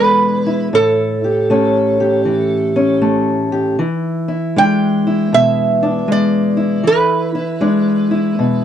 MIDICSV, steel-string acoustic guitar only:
0, 0, Header, 1, 2, 480
1, 0, Start_track
1, 0, Tempo, 767263
1, 453, Time_signature, 4, 2, 24, 8
1, 5408, End_track
2, 0, Start_track
2, 0, Title_t, "Steel-string acoustic guitar"
2, 0, Program_c, 0, 25
2, 0, Note_on_c, 0, 47, 55
2, 0, Note_on_c, 0, 52, 68
2, 0, Note_on_c, 0, 56, 59
2, 0, Note_on_c, 0, 62, 53
2, 0, Note_on_c, 0, 64, 53
2, 0, Note_on_c, 0, 68, 62
2, 289, Note_off_c, 0, 64, 0
2, 291, Note_on_c, 0, 64, 55
2, 429, Note_off_c, 0, 47, 0
2, 431, Note_off_c, 0, 56, 0
2, 436, Note_off_c, 0, 62, 0
2, 456, Note_on_c, 0, 45, 73
2, 461, Note_off_c, 0, 68, 0
2, 719, Note_off_c, 0, 52, 0
2, 775, Note_off_c, 0, 64, 0
2, 777, Note_on_c, 0, 67, 52
2, 938, Note_on_c, 0, 57, 62
2, 943, Note_on_c, 0, 61, 53
2, 1245, Note_off_c, 0, 67, 0
2, 1252, Note_on_c, 0, 67, 50
2, 1409, Note_on_c, 0, 52, 54
2, 1719, Note_off_c, 0, 61, 0
2, 1726, Note_on_c, 0, 61, 57
2, 1879, Note_off_c, 0, 57, 0
2, 1886, Note_on_c, 0, 57, 65
2, 2195, Note_off_c, 0, 67, 0
2, 2203, Note_on_c, 0, 67, 56
2, 2350, Note_off_c, 0, 57, 0
2, 2353, Note_off_c, 0, 67, 0
2, 2355, Note_off_c, 0, 61, 0
2, 2356, Note_off_c, 0, 45, 0
2, 2367, Note_off_c, 0, 52, 0
2, 2369, Note_on_c, 0, 52, 75
2, 2679, Note_on_c, 0, 64, 51
2, 2855, Note_on_c, 0, 56, 61
2, 2860, Note_on_c, 0, 62, 55
2, 3168, Note_off_c, 0, 64, 0
2, 3171, Note_on_c, 0, 64, 55
2, 3332, Note_on_c, 0, 47, 56
2, 3637, Note_off_c, 0, 62, 0
2, 3645, Note_on_c, 0, 62, 57
2, 3796, Note_off_c, 0, 56, 0
2, 3803, Note_on_c, 0, 56, 59
2, 4108, Note_off_c, 0, 64, 0
2, 4110, Note_on_c, 0, 64, 55
2, 4268, Note_off_c, 0, 56, 0
2, 4272, Note_off_c, 0, 47, 0
2, 4273, Note_off_c, 0, 62, 0
2, 4274, Note_off_c, 0, 52, 0
2, 4276, Note_on_c, 0, 52, 67
2, 4595, Note_off_c, 0, 64, 0
2, 4597, Note_on_c, 0, 64, 53
2, 4758, Note_on_c, 0, 56, 61
2, 4761, Note_on_c, 0, 62, 56
2, 5071, Note_off_c, 0, 64, 0
2, 5073, Note_on_c, 0, 64, 52
2, 5247, Note_on_c, 0, 47, 60
2, 5408, Note_off_c, 0, 47, 0
2, 5408, Note_off_c, 0, 52, 0
2, 5408, Note_off_c, 0, 56, 0
2, 5408, Note_off_c, 0, 62, 0
2, 5408, Note_off_c, 0, 64, 0
2, 5408, End_track
0, 0, End_of_file